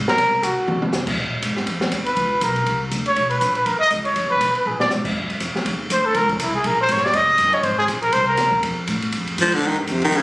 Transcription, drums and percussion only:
0.08 snare
0.18 kick, ride
0.43 kick, hi-hat pedal, ride
0.68 mid tom
0.82 mid tom
0.93 snare, hi-hat pedal
1.07 kick, crash
1.17 kick
1.42 kick, hi-hat pedal, ride
1.57 snare
1.67 kick, ride
1.81 snare
1.92 kick, hi-hat pedal, ride
2.06 ride
2.17 kick, ride
2.41 kick, hi-hat pedal, ride
2.56 ride
2.66 kick, ride
2.91 kick, hi-hat pedal, ride
3.06 ride
3.16 kick, ride
3.31 ride
3.41 kick, hi-hat pedal, ride
3.55 ride
3.66 kick, ride
3.90 kick, hi-hat pedal, ride
4.05 ride
4.16 kick, ride
4.41 kick, hi-hat pedal, ride
4.55 ride
4.80 snare
4.91 snare, hi-hat pedal
5.05 kick, crash
5.16 kick
5.30 ride
5.40 kick, hi-hat pedal, ride
5.56 snare
5.66 kick, ride
5.90 kick, hi-hat pedal, ride
6.14 kick, ride
6.29 kick, ride
6.40 kick, hi-hat pedal, ride
6.64 kick, ride
6.89 kick, hi-hat pedal, ride
6.97 snare
7.06 snare
7.13 kick, ride
7.38 kick, hi-hat pedal, ride
7.53 ride
7.63 kick, ride
7.88 kick, hi-hat pedal, ride
8.02 ride
8.12 kick, ride
8.37 kick, snare, hi-hat pedal, ride
8.52 kick
8.63 kick, ride
8.87 kick, hi-hat pedal, ride
9.02 ride
9.12 kick, ride
9.27 ride
9.38 kick, hi-hat pedal, ride
9.52 ride
9.62 kick
9.87 kick, hi-hat pedal, ride
10.02 ride
10.12 kick, ride

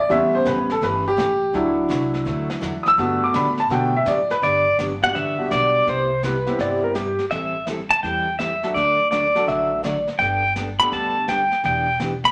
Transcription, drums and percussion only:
0.10 brush sweep, kick, snare
0.45 kick, snare, hi-hat pedal
0.70 snare
0.82 brush sweep, kick, snare
1.18 kick, snare, hi-hat pedal
1.54 brush sweep, kick, snare
1.90 kick, snare, hi-hat pedal
2.14 snare
2.26 brush sweep, kick, snare
2.50 snare
2.62 kick, snare, hi-hat pedal
2.86 snare
2.98 brush sweep, kick, snare
3.34 kick, snare, hi-hat pedal
3.58 snare
3.70 brush sweep, kick, snare
4.06 kick, snare, hi-hat pedal
4.30 snare
4.42 brush sweep, kick, snare
4.79 kick, snare, hi-hat pedal
5.02 snare
5.15 brush sweep, kick, snare
5.51 kick, snare, hi-hat pedal
5.87 brush sweep, kick, snare
6.23 kick, snare, hi-hat pedal
6.46 snare
6.59 brush sweep, kick, snare
6.95 kick, snare, hi-hat pedal
7.19 snare
7.30 brush sweep, kick, snare
7.67 kick, snare, hi-hat pedal
7.91 snare
8.03 brush sweep, kick, snare
8.39 kick, snare, hi-hat pedal
8.63 snare
8.75 brush sweep, kick, snare
9.11 kick, snare, hi-hat pedal
9.35 snare
9.48 brush sweep, kick, snare
9.84 kick, snare, hi-hat pedal
10.07 snare
10.20 brush sweep, kick, snare
10.56 kick, snare, hi-hat pedal
10.80 snare
10.92 brush sweep, kick, snare
11.28 kick, snare, hi-hat pedal
11.52 snare
11.64 brush sweep, kick, snare
12.00 kick, snare, hi-hat pedal
12.24 snare

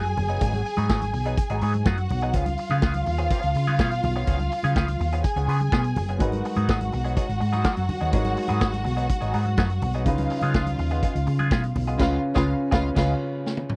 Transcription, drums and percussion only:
0.05 closed hi-hat
0.17 open hi-hat, high conga, low conga
0.29 closed hi-hat
0.41 kick, closed hi-hat, low conga
0.53 closed hi-hat, muted conga, high conga
0.66 open hi-hat
0.77 closed hi-hat, high conga
0.90 kick, snare, muted conga
1.02 closed hi-hat, high conga
1.13 open hi-hat, low conga
1.26 closed hi-hat
1.37 kick, closed hi-hat
1.49 closed hi-hat, muted conga
1.61 open hi-hat
1.73 closed hi-hat, high conga
1.86 kick, snare, high conga
1.97 closed hi-hat, muted conga
2.09 open hi-hat, high conga, low conga
2.21 closed hi-hat
2.33 kick, closed hi-hat, low conga
2.46 closed hi-hat, muted conga, high conga
2.57 open hi-hat
2.70 closed hi-hat, high conga
2.82 kick, snare, muted conga
2.94 closed hi-hat, muted conga, high conga
3.06 open hi-hat, low conga
3.19 closed hi-hat
3.30 kick, closed hi-hat
3.43 closed hi-hat
3.54 open hi-hat
3.67 closed hi-hat, high conga
3.79 kick, snare, muted conga, high conga
3.91 closed hi-hat, muted conga
4.03 open hi-hat, high conga, low conga
4.16 closed hi-hat
4.27 kick, closed hi-hat, muted conga, low conga
4.40 closed hi-hat, high conga
4.52 open hi-hat
4.63 closed hi-hat, high conga
4.76 kick, snare, muted conga
4.88 closed hi-hat, high conga
5.00 open hi-hat, low conga
5.12 closed hi-hat
5.24 kick, closed hi-hat
5.36 closed hi-hat, muted conga
5.49 open hi-hat
5.60 closed hi-hat, high conga
5.72 kick, snare, muted conga, high conga
5.84 closed hi-hat
5.96 open hi-hat, high conga, low conga
6.08 closed hi-hat
6.20 kick, closed hi-hat, low conga
6.32 closed hi-hat, muted conga, high conga
6.45 open hi-hat
6.56 closed hi-hat, high conga
6.69 kick, snare, muted conga
6.81 closed hi-hat, muted conga, high conga
6.92 open hi-hat, low conga
7.05 closed hi-hat
7.17 kick, closed hi-hat, muted conga
7.29 closed hi-hat
7.41 open hi-hat
7.53 closed hi-hat, high conga
7.64 kick, snare, muted conga, high conga
7.77 closed hi-hat
7.89 open hi-hat, high conga, low conga
8.01 closed hi-hat
8.13 kick, closed hi-hat, muted conga, low conga
8.25 closed hi-hat, muted conga, high conga
8.37 open hi-hat
8.48 closed hi-hat, high conga
8.61 kick, snare, muted conga
8.73 closed hi-hat, muted conga, high conga
8.84 open hi-hat, low conga
8.98 closed hi-hat
9.09 kick, closed hi-hat, muted conga
9.21 closed hi-hat, muted conga
9.34 open hi-hat
9.45 closed hi-hat, high conga
9.57 kick, snare, muted conga, high conga
9.70 closed hi-hat
9.81 open hi-hat, high conga, low conga
9.93 closed hi-hat
10.06 kick, closed hi-hat, muted conga, low conga
10.18 closed hi-hat, muted conga, high conga
10.30 open hi-hat
10.42 closed hi-hat, high conga
10.54 kick, snare
10.66 closed hi-hat, high conga
10.78 open hi-hat, low conga
10.91 closed hi-hat
11.03 kick, closed hi-hat
11.16 closed hi-hat
11.27 open hi-hat
11.39 closed hi-hat, high conga
11.51 kick, snare, high conga
11.63 closed hi-hat, muted conga
11.75 open hi-hat, high conga, low conga
11.87 closed hi-hat
12.00 kick, snare, crash
12.36 kick, snare
12.72 kick, snare
12.96 kick, snare, crash
13.46 snare
13.57 high tom
13.69 mid tom

